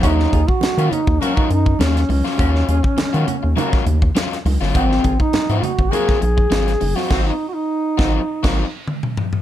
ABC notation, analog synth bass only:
X:1
M:4/4
L:1/16
Q:1/4=102
K:Ebdor
V:1 name="Analog synth bass" clef=bass
E,,2 E,, z E, E, z E,, z2 G,,2 E,,2 D,, z | E,,2 E,, z E, E, z E,, z2 E,,2 z2 D,, =G,,, | A,,,2 A,,, z A,, A,, z A,,, z2 B,,,2 A,,,2 G,,, z | A,,,2 z4 A,,,2 z A,,,2 z4 z |]